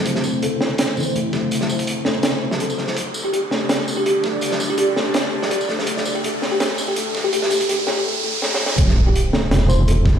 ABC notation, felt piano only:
X:1
M:4/4
L:1/8
Q:"Swing 16ths" 1/4=165
K:Am
V:1 name="Felt piano"
z2 A3 E, A, A, | z3 A, z2 A2 | z3 A, z3 A, | z3 A, z3 A, |
A, z A, z A, z A, z | A, A, A, A, A, A, A, A, | z3 A, z2 A2 |]